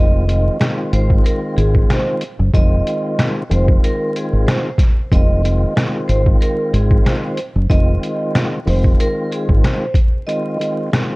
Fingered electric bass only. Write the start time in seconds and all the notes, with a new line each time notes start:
Already playing: F1
0.93 G#1
1.57 G#1
2.39 F#1
2.54 F1
3.51 F1
4.33 G#1
5.12 F1
6.09 G#1
6.73 G#1
7.55 F#1
7.70 F1
8.67 F1
9.49 G#1